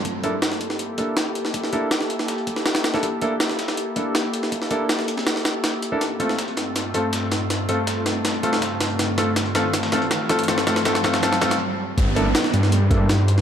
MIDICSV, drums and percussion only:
0, 0, Header, 1, 2, 480
1, 0, Start_track
1, 0, Tempo, 372671
1, 64, Time_signature, 4, 2, 24, 8
1, 17275, End_track
2, 0, Start_track
2, 0, Title_t, "Drums"
2, 64, Note_on_c, 9, 36, 101
2, 64, Note_on_c, 9, 42, 82
2, 65, Note_off_c, 9, 42, 0
2, 65, Note_on_c, 9, 42, 83
2, 193, Note_off_c, 9, 36, 0
2, 194, Note_off_c, 9, 42, 0
2, 303, Note_on_c, 9, 42, 64
2, 304, Note_off_c, 9, 42, 0
2, 304, Note_on_c, 9, 42, 65
2, 433, Note_off_c, 9, 42, 0
2, 542, Note_on_c, 9, 38, 107
2, 542, Note_on_c, 9, 42, 84
2, 543, Note_off_c, 9, 38, 0
2, 543, Note_off_c, 9, 42, 0
2, 543, Note_on_c, 9, 38, 113
2, 543, Note_on_c, 9, 42, 84
2, 666, Note_off_c, 9, 38, 0
2, 666, Note_off_c, 9, 42, 0
2, 666, Note_on_c, 9, 38, 47
2, 666, Note_on_c, 9, 42, 43
2, 782, Note_off_c, 9, 42, 0
2, 782, Note_on_c, 9, 42, 61
2, 783, Note_off_c, 9, 42, 0
2, 783, Note_on_c, 9, 42, 64
2, 795, Note_off_c, 9, 38, 0
2, 902, Note_on_c, 9, 38, 44
2, 912, Note_off_c, 9, 42, 0
2, 1020, Note_on_c, 9, 42, 84
2, 1023, Note_off_c, 9, 42, 0
2, 1023, Note_on_c, 9, 42, 82
2, 1031, Note_off_c, 9, 38, 0
2, 1152, Note_off_c, 9, 42, 0
2, 1260, Note_on_c, 9, 42, 64
2, 1262, Note_off_c, 9, 42, 0
2, 1262, Note_on_c, 9, 36, 91
2, 1262, Note_on_c, 9, 42, 67
2, 1391, Note_off_c, 9, 36, 0
2, 1391, Note_off_c, 9, 42, 0
2, 1502, Note_on_c, 9, 38, 110
2, 1502, Note_on_c, 9, 42, 80
2, 1503, Note_off_c, 9, 38, 0
2, 1503, Note_off_c, 9, 42, 0
2, 1503, Note_on_c, 9, 38, 105
2, 1503, Note_on_c, 9, 42, 80
2, 1631, Note_off_c, 9, 38, 0
2, 1631, Note_off_c, 9, 42, 0
2, 1743, Note_on_c, 9, 42, 64
2, 1864, Note_on_c, 9, 38, 42
2, 1872, Note_off_c, 9, 42, 0
2, 1982, Note_on_c, 9, 42, 81
2, 1984, Note_off_c, 9, 42, 0
2, 1984, Note_on_c, 9, 36, 98
2, 1984, Note_on_c, 9, 42, 81
2, 1993, Note_off_c, 9, 38, 0
2, 2107, Note_on_c, 9, 38, 37
2, 2112, Note_off_c, 9, 36, 0
2, 2113, Note_off_c, 9, 42, 0
2, 2223, Note_on_c, 9, 42, 63
2, 2236, Note_off_c, 9, 38, 0
2, 2352, Note_off_c, 9, 42, 0
2, 2462, Note_on_c, 9, 38, 109
2, 2462, Note_on_c, 9, 42, 85
2, 2585, Note_off_c, 9, 38, 0
2, 2585, Note_on_c, 9, 38, 46
2, 2591, Note_off_c, 9, 42, 0
2, 2704, Note_on_c, 9, 42, 59
2, 2705, Note_off_c, 9, 42, 0
2, 2705, Note_on_c, 9, 42, 63
2, 2714, Note_off_c, 9, 38, 0
2, 2825, Note_on_c, 9, 38, 49
2, 2834, Note_off_c, 9, 42, 0
2, 2941, Note_on_c, 9, 42, 85
2, 2943, Note_off_c, 9, 38, 0
2, 2943, Note_off_c, 9, 42, 0
2, 2943, Note_on_c, 9, 38, 103
2, 2943, Note_on_c, 9, 42, 78
2, 3067, Note_off_c, 9, 42, 0
2, 3067, Note_on_c, 9, 42, 38
2, 3072, Note_off_c, 9, 38, 0
2, 3182, Note_off_c, 9, 42, 0
2, 3182, Note_on_c, 9, 36, 86
2, 3182, Note_on_c, 9, 42, 66
2, 3186, Note_off_c, 9, 42, 0
2, 3186, Note_on_c, 9, 42, 68
2, 3302, Note_on_c, 9, 38, 49
2, 3311, Note_off_c, 9, 36, 0
2, 3315, Note_off_c, 9, 42, 0
2, 3420, Note_off_c, 9, 38, 0
2, 3420, Note_on_c, 9, 38, 99
2, 3420, Note_on_c, 9, 42, 75
2, 3426, Note_off_c, 9, 38, 0
2, 3426, Note_off_c, 9, 42, 0
2, 3426, Note_on_c, 9, 38, 111
2, 3426, Note_on_c, 9, 42, 81
2, 3538, Note_off_c, 9, 38, 0
2, 3538, Note_on_c, 9, 38, 110
2, 3555, Note_off_c, 9, 42, 0
2, 3660, Note_off_c, 9, 38, 0
2, 3660, Note_on_c, 9, 38, 105
2, 3660, Note_on_c, 9, 42, 78
2, 3667, Note_off_c, 9, 42, 0
2, 3667, Note_on_c, 9, 42, 66
2, 3783, Note_off_c, 9, 38, 0
2, 3783, Note_on_c, 9, 38, 50
2, 3789, Note_off_c, 9, 42, 0
2, 3789, Note_on_c, 9, 42, 42
2, 3901, Note_off_c, 9, 42, 0
2, 3901, Note_on_c, 9, 42, 81
2, 3902, Note_on_c, 9, 36, 105
2, 3907, Note_off_c, 9, 42, 0
2, 3907, Note_on_c, 9, 42, 83
2, 3912, Note_off_c, 9, 38, 0
2, 4031, Note_off_c, 9, 36, 0
2, 4035, Note_off_c, 9, 42, 0
2, 4140, Note_on_c, 9, 42, 65
2, 4147, Note_off_c, 9, 42, 0
2, 4147, Note_on_c, 9, 42, 65
2, 4276, Note_off_c, 9, 42, 0
2, 4380, Note_on_c, 9, 38, 112
2, 4380, Note_on_c, 9, 42, 85
2, 4387, Note_off_c, 9, 38, 0
2, 4387, Note_off_c, 9, 42, 0
2, 4387, Note_on_c, 9, 38, 110
2, 4387, Note_on_c, 9, 42, 84
2, 4502, Note_off_c, 9, 38, 0
2, 4502, Note_on_c, 9, 38, 48
2, 4510, Note_off_c, 9, 42, 0
2, 4510, Note_on_c, 9, 42, 44
2, 4621, Note_off_c, 9, 42, 0
2, 4621, Note_on_c, 9, 42, 67
2, 4627, Note_off_c, 9, 38, 0
2, 4627, Note_off_c, 9, 42, 0
2, 4627, Note_on_c, 9, 38, 105
2, 4627, Note_on_c, 9, 42, 77
2, 4743, Note_off_c, 9, 38, 0
2, 4743, Note_on_c, 9, 38, 47
2, 4747, Note_off_c, 9, 38, 0
2, 4747, Note_off_c, 9, 42, 0
2, 4747, Note_on_c, 9, 38, 105
2, 4747, Note_on_c, 9, 42, 79
2, 4861, Note_off_c, 9, 42, 0
2, 4861, Note_on_c, 9, 42, 83
2, 4865, Note_off_c, 9, 42, 0
2, 4865, Note_on_c, 9, 42, 87
2, 4876, Note_off_c, 9, 38, 0
2, 4994, Note_off_c, 9, 42, 0
2, 5102, Note_on_c, 9, 36, 88
2, 5102, Note_on_c, 9, 42, 66
2, 5105, Note_off_c, 9, 42, 0
2, 5105, Note_on_c, 9, 42, 69
2, 5231, Note_off_c, 9, 36, 0
2, 5234, Note_off_c, 9, 42, 0
2, 5343, Note_on_c, 9, 38, 111
2, 5343, Note_on_c, 9, 42, 84
2, 5346, Note_off_c, 9, 38, 0
2, 5346, Note_off_c, 9, 42, 0
2, 5346, Note_on_c, 9, 38, 111
2, 5346, Note_on_c, 9, 42, 84
2, 5475, Note_off_c, 9, 38, 0
2, 5475, Note_off_c, 9, 42, 0
2, 5583, Note_on_c, 9, 42, 68
2, 5585, Note_off_c, 9, 42, 0
2, 5585, Note_on_c, 9, 42, 68
2, 5706, Note_on_c, 9, 38, 45
2, 5713, Note_off_c, 9, 42, 0
2, 5822, Note_on_c, 9, 36, 103
2, 5822, Note_on_c, 9, 42, 83
2, 5835, Note_off_c, 9, 38, 0
2, 5946, Note_on_c, 9, 38, 39
2, 5951, Note_off_c, 9, 36, 0
2, 5951, Note_off_c, 9, 42, 0
2, 6061, Note_on_c, 9, 42, 66
2, 6074, Note_off_c, 9, 38, 0
2, 6190, Note_off_c, 9, 42, 0
2, 6302, Note_on_c, 9, 38, 114
2, 6302, Note_on_c, 9, 42, 86
2, 6424, Note_off_c, 9, 38, 0
2, 6424, Note_on_c, 9, 38, 46
2, 6430, Note_off_c, 9, 42, 0
2, 6540, Note_on_c, 9, 46, 80
2, 6544, Note_on_c, 9, 42, 67
2, 6553, Note_off_c, 9, 38, 0
2, 6663, Note_off_c, 9, 42, 0
2, 6663, Note_on_c, 9, 42, 43
2, 6666, Note_on_c, 9, 38, 49
2, 6669, Note_off_c, 9, 46, 0
2, 6782, Note_off_c, 9, 38, 0
2, 6782, Note_off_c, 9, 42, 0
2, 6782, Note_on_c, 9, 38, 104
2, 6782, Note_on_c, 9, 42, 76
2, 6905, Note_off_c, 9, 38, 0
2, 6905, Note_on_c, 9, 38, 42
2, 6911, Note_off_c, 9, 42, 0
2, 7021, Note_off_c, 9, 38, 0
2, 7021, Note_on_c, 9, 38, 98
2, 7021, Note_on_c, 9, 42, 75
2, 7023, Note_off_c, 9, 42, 0
2, 7023, Note_on_c, 9, 42, 68
2, 7150, Note_off_c, 9, 38, 0
2, 7151, Note_off_c, 9, 42, 0
2, 7261, Note_on_c, 9, 38, 101
2, 7261, Note_on_c, 9, 42, 77
2, 7263, Note_off_c, 9, 38, 0
2, 7263, Note_off_c, 9, 42, 0
2, 7263, Note_on_c, 9, 38, 103
2, 7263, Note_on_c, 9, 42, 75
2, 7387, Note_off_c, 9, 42, 0
2, 7387, Note_on_c, 9, 42, 39
2, 7391, Note_off_c, 9, 38, 0
2, 7502, Note_off_c, 9, 42, 0
2, 7502, Note_on_c, 9, 42, 76
2, 7503, Note_off_c, 9, 42, 0
2, 7503, Note_on_c, 9, 42, 69
2, 7631, Note_off_c, 9, 42, 0
2, 7741, Note_on_c, 9, 42, 85
2, 7743, Note_off_c, 9, 42, 0
2, 7743, Note_on_c, 9, 38, 46
2, 7743, Note_on_c, 9, 42, 81
2, 7872, Note_off_c, 9, 38, 0
2, 7872, Note_off_c, 9, 42, 0
2, 7982, Note_on_c, 9, 42, 67
2, 7985, Note_off_c, 9, 42, 0
2, 7985, Note_on_c, 9, 42, 67
2, 8107, Note_on_c, 9, 38, 45
2, 8114, Note_off_c, 9, 42, 0
2, 8224, Note_off_c, 9, 38, 0
2, 8224, Note_on_c, 9, 38, 114
2, 8224, Note_on_c, 9, 42, 85
2, 8344, Note_off_c, 9, 42, 0
2, 8344, Note_on_c, 9, 42, 45
2, 8352, Note_off_c, 9, 38, 0
2, 8460, Note_off_c, 9, 42, 0
2, 8460, Note_on_c, 9, 42, 67
2, 8465, Note_off_c, 9, 42, 0
2, 8465, Note_on_c, 9, 38, 48
2, 8465, Note_on_c, 9, 42, 67
2, 8593, Note_off_c, 9, 38, 0
2, 8593, Note_off_c, 9, 42, 0
2, 8701, Note_on_c, 9, 42, 87
2, 8703, Note_off_c, 9, 42, 0
2, 8703, Note_on_c, 9, 38, 52
2, 8703, Note_on_c, 9, 42, 87
2, 8832, Note_off_c, 9, 38, 0
2, 8832, Note_off_c, 9, 42, 0
2, 8941, Note_on_c, 9, 42, 70
2, 8945, Note_off_c, 9, 42, 0
2, 8945, Note_on_c, 9, 42, 67
2, 9074, Note_off_c, 9, 42, 0
2, 9181, Note_on_c, 9, 42, 85
2, 9183, Note_off_c, 9, 42, 0
2, 9183, Note_on_c, 9, 38, 112
2, 9183, Note_on_c, 9, 42, 83
2, 9312, Note_off_c, 9, 38, 0
2, 9312, Note_off_c, 9, 42, 0
2, 9421, Note_on_c, 9, 42, 66
2, 9424, Note_off_c, 9, 42, 0
2, 9424, Note_on_c, 9, 38, 59
2, 9424, Note_on_c, 9, 42, 69
2, 9553, Note_off_c, 9, 38, 0
2, 9553, Note_off_c, 9, 42, 0
2, 9662, Note_on_c, 9, 42, 84
2, 9663, Note_off_c, 9, 42, 0
2, 9663, Note_on_c, 9, 38, 55
2, 9663, Note_on_c, 9, 42, 86
2, 9792, Note_off_c, 9, 38, 0
2, 9792, Note_off_c, 9, 42, 0
2, 9900, Note_on_c, 9, 42, 68
2, 9901, Note_off_c, 9, 42, 0
2, 9901, Note_on_c, 9, 42, 65
2, 10030, Note_off_c, 9, 42, 0
2, 10139, Note_on_c, 9, 38, 117
2, 10139, Note_on_c, 9, 42, 84
2, 10140, Note_off_c, 9, 42, 0
2, 10140, Note_on_c, 9, 42, 88
2, 10268, Note_off_c, 9, 38, 0
2, 10268, Note_off_c, 9, 42, 0
2, 10380, Note_on_c, 9, 38, 64
2, 10380, Note_on_c, 9, 42, 68
2, 10381, Note_off_c, 9, 42, 0
2, 10381, Note_on_c, 9, 42, 62
2, 10509, Note_off_c, 9, 38, 0
2, 10510, Note_off_c, 9, 42, 0
2, 10622, Note_on_c, 9, 38, 108
2, 10622, Note_on_c, 9, 42, 81
2, 10744, Note_off_c, 9, 42, 0
2, 10744, Note_on_c, 9, 42, 40
2, 10751, Note_off_c, 9, 38, 0
2, 10861, Note_off_c, 9, 42, 0
2, 10861, Note_on_c, 9, 42, 65
2, 10863, Note_off_c, 9, 42, 0
2, 10863, Note_on_c, 9, 42, 69
2, 10984, Note_on_c, 9, 38, 62
2, 10992, Note_off_c, 9, 42, 0
2, 11102, Note_on_c, 9, 42, 78
2, 11103, Note_off_c, 9, 38, 0
2, 11103, Note_off_c, 9, 42, 0
2, 11103, Note_on_c, 9, 38, 115
2, 11103, Note_on_c, 9, 42, 90
2, 11231, Note_off_c, 9, 38, 0
2, 11231, Note_off_c, 9, 42, 0
2, 11341, Note_on_c, 9, 38, 72
2, 11341, Note_on_c, 9, 42, 83
2, 11463, Note_off_c, 9, 42, 0
2, 11463, Note_on_c, 9, 42, 44
2, 11470, Note_off_c, 9, 38, 0
2, 11581, Note_off_c, 9, 42, 0
2, 11581, Note_on_c, 9, 42, 90
2, 11582, Note_off_c, 9, 42, 0
2, 11582, Note_on_c, 9, 38, 72
2, 11582, Note_on_c, 9, 42, 84
2, 11711, Note_off_c, 9, 38, 0
2, 11711, Note_off_c, 9, 42, 0
2, 11821, Note_on_c, 9, 42, 66
2, 11822, Note_off_c, 9, 42, 0
2, 11822, Note_on_c, 9, 38, 76
2, 11822, Note_on_c, 9, 42, 69
2, 11951, Note_off_c, 9, 38, 0
2, 11951, Note_off_c, 9, 42, 0
2, 12059, Note_on_c, 9, 38, 116
2, 12059, Note_on_c, 9, 42, 88
2, 12060, Note_off_c, 9, 38, 0
2, 12060, Note_off_c, 9, 42, 0
2, 12060, Note_on_c, 9, 38, 78
2, 12060, Note_on_c, 9, 42, 88
2, 12181, Note_off_c, 9, 42, 0
2, 12181, Note_on_c, 9, 42, 44
2, 12189, Note_off_c, 9, 38, 0
2, 12299, Note_off_c, 9, 42, 0
2, 12299, Note_on_c, 9, 38, 106
2, 12299, Note_on_c, 9, 42, 80
2, 12300, Note_off_c, 9, 38, 0
2, 12300, Note_off_c, 9, 42, 0
2, 12300, Note_on_c, 9, 38, 80
2, 12300, Note_on_c, 9, 42, 78
2, 12429, Note_off_c, 9, 38, 0
2, 12429, Note_off_c, 9, 42, 0
2, 12539, Note_on_c, 9, 38, 81
2, 12539, Note_on_c, 9, 42, 89
2, 12540, Note_off_c, 9, 42, 0
2, 12540, Note_on_c, 9, 42, 62
2, 12661, Note_off_c, 9, 38, 0
2, 12661, Note_off_c, 9, 42, 0
2, 12661, Note_on_c, 9, 38, 105
2, 12661, Note_on_c, 9, 42, 79
2, 12778, Note_off_c, 9, 38, 0
2, 12778, Note_off_c, 9, 42, 0
2, 12778, Note_on_c, 9, 38, 79
2, 12778, Note_on_c, 9, 42, 68
2, 12903, Note_off_c, 9, 42, 0
2, 12903, Note_on_c, 9, 42, 60
2, 12907, Note_off_c, 9, 38, 0
2, 13019, Note_off_c, 9, 42, 0
2, 13019, Note_on_c, 9, 38, 118
2, 13019, Note_on_c, 9, 42, 87
2, 13148, Note_off_c, 9, 38, 0
2, 13148, Note_off_c, 9, 42, 0
2, 13259, Note_on_c, 9, 38, 91
2, 13259, Note_on_c, 9, 42, 81
2, 13261, Note_off_c, 9, 42, 0
2, 13261, Note_on_c, 9, 42, 69
2, 13379, Note_off_c, 9, 42, 0
2, 13379, Note_on_c, 9, 42, 71
2, 13388, Note_off_c, 9, 38, 0
2, 13440, Note_off_c, 9, 42, 0
2, 13440, Note_on_c, 9, 42, 69
2, 13501, Note_off_c, 9, 42, 0
2, 13501, Note_on_c, 9, 38, 90
2, 13501, Note_on_c, 9, 42, 89
2, 13624, Note_off_c, 9, 38, 0
2, 13624, Note_on_c, 9, 38, 84
2, 13630, Note_off_c, 9, 42, 0
2, 13741, Note_on_c, 9, 42, 68
2, 13742, Note_off_c, 9, 38, 0
2, 13742, Note_off_c, 9, 42, 0
2, 13742, Note_on_c, 9, 38, 95
2, 13742, Note_on_c, 9, 42, 71
2, 13863, Note_off_c, 9, 38, 0
2, 13863, Note_on_c, 9, 38, 84
2, 13871, Note_off_c, 9, 42, 0
2, 13978, Note_off_c, 9, 38, 0
2, 13978, Note_on_c, 9, 38, 114
2, 13978, Note_on_c, 9, 42, 85
2, 13981, Note_off_c, 9, 38, 0
2, 13981, Note_off_c, 9, 42, 0
2, 13981, Note_on_c, 9, 38, 98
2, 13981, Note_on_c, 9, 42, 93
2, 14106, Note_off_c, 9, 38, 0
2, 14106, Note_on_c, 9, 38, 91
2, 14110, Note_off_c, 9, 42, 0
2, 14219, Note_off_c, 9, 38, 0
2, 14219, Note_on_c, 9, 38, 109
2, 14219, Note_on_c, 9, 42, 81
2, 14225, Note_off_c, 9, 38, 0
2, 14225, Note_on_c, 9, 38, 96
2, 14343, Note_off_c, 9, 38, 0
2, 14343, Note_off_c, 9, 42, 0
2, 14343, Note_on_c, 9, 38, 112
2, 14343, Note_on_c, 9, 42, 83
2, 14346, Note_off_c, 9, 38, 0
2, 14346, Note_on_c, 9, 38, 90
2, 14459, Note_off_c, 9, 42, 0
2, 14459, Note_on_c, 9, 42, 92
2, 14464, Note_off_c, 9, 38, 0
2, 14464, Note_off_c, 9, 42, 0
2, 14464, Note_on_c, 9, 38, 100
2, 14464, Note_on_c, 9, 42, 88
2, 14587, Note_off_c, 9, 38, 0
2, 14587, Note_on_c, 9, 38, 87
2, 14593, Note_off_c, 9, 42, 0
2, 14701, Note_off_c, 9, 38, 0
2, 14701, Note_on_c, 9, 38, 107
2, 14701, Note_on_c, 9, 42, 84
2, 14705, Note_off_c, 9, 38, 0
2, 14705, Note_off_c, 9, 42, 0
2, 14705, Note_on_c, 9, 38, 102
2, 14705, Note_on_c, 9, 42, 76
2, 14828, Note_off_c, 9, 38, 0
2, 14828, Note_off_c, 9, 42, 0
2, 14828, Note_on_c, 9, 38, 93
2, 14828, Note_on_c, 9, 42, 79
2, 14957, Note_off_c, 9, 38, 0
2, 14957, Note_off_c, 9, 42, 0
2, 15425, Note_on_c, 9, 36, 102
2, 15426, Note_on_c, 9, 42, 85
2, 15427, Note_off_c, 9, 42, 0
2, 15427, Note_on_c, 9, 42, 87
2, 15554, Note_off_c, 9, 36, 0
2, 15556, Note_off_c, 9, 42, 0
2, 15667, Note_on_c, 9, 42, 69
2, 15796, Note_off_c, 9, 42, 0
2, 15904, Note_on_c, 9, 38, 118
2, 15904, Note_on_c, 9, 42, 91
2, 15908, Note_off_c, 9, 38, 0
2, 15908, Note_off_c, 9, 42, 0
2, 15908, Note_on_c, 9, 38, 115
2, 15908, Note_on_c, 9, 42, 86
2, 16028, Note_off_c, 9, 38, 0
2, 16028, Note_on_c, 9, 38, 49
2, 16029, Note_off_c, 9, 42, 0
2, 16029, Note_on_c, 9, 42, 45
2, 16145, Note_off_c, 9, 42, 0
2, 16145, Note_on_c, 9, 42, 72
2, 16148, Note_off_c, 9, 42, 0
2, 16148, Note_on_c, 9, 42, 66
2, 16157, Note_off_c, 9, 38, 0
2, 16270, Note_on_c, 9, 38, 47
2, 16276, Note_off_c, 9, 42, 0
2, 16385, Note_on_c, 9, 42, 92
2, 16386, Note_off_c, 9, 42, 0
2, 16386, Note_on_c, 9, 42, 87
2, 16399, Note_off_c, 9, 38, 0
2, 16515, Note_off_c, 9, 42, 0
2, 16624, Note_on_c, 9, 42, 70
2, 16625, Note_on_c, 9, 36, 92
2, 16628, Note_off_c, 9, 42, 0
2, 16628, Note_on_c, 9, 42, 66
2, 16754, Note_off_c, 9, 36, 0
2, 16756, Note_off_c, 9, 42, 0
2, 16864, Note_on_c, 9, 38, 116
2, 16864, Note_on_c, 9, 42, 88
2, 16867, Note_off_c, 9, 38, 0
2, 16867, Note_off_c, 9, 42, 0
2, 16867, Note_on_c, 9, 38, 114
2, 16867, Note_on_c, 9, 42, 86
2, 16995, Note_off_c, 9, 38, 0
2, 16995, Note_off_c, 9, 42, 0
2, 17106, Note_on_c, 9, 42, 70
2, 17108, Note_off_c, 9, 42, 0
2, 17108, Note_on_c, 9, 42, 70
2, 17230, Note_on_c, 9, 38, 45
2, 17237, Note_off_c, 9, 42, 0
2, 17275, Note_off_c, 9, 38, 0
2, 17275, End_track
0, 0, End_of_file